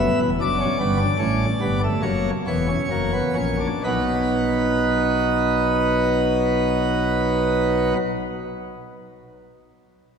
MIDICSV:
0, 0, Header, 1, 2, 480
1, 0, Start_track
1, 0, Tempo, 781250
1, 248, Time_signature, 4, 2, 24, 8
1, 733, Tempo, 859599
1, 1693, Tempo, 963082
1, 3613, Tempo, 978793
1, 5289, End_track
2, 0, Start_track
2, 0, Title_t, "Pipe organ"
2, 0, Program_c, 0, 19
2, 0, Note_on_c, 0, 59, 92
2, 0, Note_on_c, 0, 76, 90
2, 119, Note_off_c, 0, 76, 0
2, 137, Note_on_c, 0, 40, 95
2, 138, Note_on_c, 0, 28, 95
2, 182, Note_off_c, 0, 59, 0
2, 235, Note_off_c, 0, 40, 0
2, 236, Note_off_c, 0, 28, 0
2, 249, Note_on_c, 0, 30, 84
2, 251, Note_on_c, 0, 62, 87
2, 255, Note_on_c, 0, 42, 85
2, 255, Note_on_c, 0, 74, 90
2, 352, Note_off_c, 0, 62, 0
2, 373, Note_on_c, 0, 61, 83
2, 397, Note_off_c, 0, 30, 0
2, 401, Note_off_c, 0, 42, 0
2, 474, Note_off_c, 0, 61, 0
2, 494, Note_on_c, 0, 31, 85
2, 494, Note_on_c, 0, 43, 83
2, 494, Note_on_c, 0, 59, 83
2, 596, Note_off_c, 0, 59, 0
2, 616, Note_on_c, 0, 62, 90
2, 644, Note_off_c, 0, 43, 0
2, 645, Note_off_c, 0, 31, 0
2, 719, Note_off_c, 0, 62, 0
2, 731, Note_on_c, 0, 61, 85
2, 733, Note_on_c, 0, 33, 82
2, 734, Note_on_c, 0, 45, 81
2, 874, Note_off_c, 0, 61, 0
2, 876, Note_off_c, 0, 33, 0
2, 877, Note_off_c, 0, 45, 0
2, 968, Note_on_c, 0, 59, 87
2, 969, Note_on_c, 0, 31, 86
2, 969, Note_on_c, 0, 43, 86
2, 1067, Note_off_c, 0, 59, 0
2, 1077, Note_off_c, 0, 74, 0
2, 1093, Note_on_c, 0, 57, 85
2, 1114, Note_off_c, 0, 31, 0
2, 1114, Note_off_c, 0, 43, 0
2, 1190, Note_off_c, 0, 57, 0
2, 1196, Note_on_c, 0, 42, 76
2, 1198, Note_on_c, 0, 73, 82
2, 1199, Note_on_c, 0, 58, 88
2, 1200, Note_on_c, 0, 30, 84
2, 1348, Note_off_c, 0, 42, 0
2, 1349, Note_off_c, 0, 73, 0
2, 1350, Note_off_c, 0, 58, 0
2, 1351, Note_off_c, 0, 30, 0
2, 1445, Note_on_c, 0, 28, 73
2, 1447, Note_on_c, 0, 73, 78
2, 1449, Note_on_c, 0, 40, 74
2, 1449, Note_on_c, 0, 59, 82
2, 1553, Note_off_c, 0, 59, 0
2, 1565, Note_on_c, 0, 61, 80
2, 1600, Note_off_c, 0, 28, 0
2, 1603, Note_off_c, 0, 40, 0
2, 1675, Note_off_c, 0, 61, 0
2, 1690, Note_on_c, 0, 30, 75
2, 1692, Note_on_c, 0, 58, 81
2, 1693, Note_on_c, 0, 42, 73
2, 1792, Note_off_c, 0, 58, 0
2, 1802, Note_on_c, 0, 59, 73
2, 1836, Note_off_c, 0, 30, 0
2, 1837, Note_off_c, 0, 42, 0
2, 1906, Note_off_c, 0, 59, 0
2, 1912, Note_on_c, 0, 61, 89
2, 1915, Note_on_c, 0, 34, 83
2, 1915, Note_on_c, 0, 46, 89
2, 2020, Note_off_c, 0, 61, 0
2, 2037, Note_on_c, 0, 62, 79
2, 2066, Note_off_c, 0, 34, 0
2, 2067, Note_off_c, 0, 46, 0
2, 2070, Note_off_c, 0, 73, 0
2, 2144, Note_off_c, 0, 62, 0
2, 2154, Note_on_c, 0, 47, 84
2, 2155, Note_on_c, 0, 35, 80
2, 2157, Note_on_c, 0, 63, 83
2, 2157, Note_on_c, 0, 71, 81
2, 2171, Note_on_c, 0, 59, 73
2, 2172, Note_on_c, 0, 54, 71
2, 4185, Note_off_c, 0, 47, 0
2, 4186, Note_off_c, 0, 35, 0
2, 4188, Note_off_c, 0, 63, 0
2, 4188, Note_off_c, 0, 71, 0
2, 4202, Note_off_c, 0, 59, 0
2, 4203, Note_off_c, 0, 54, 0
2, 5289, End_track
0, 0, End_of_file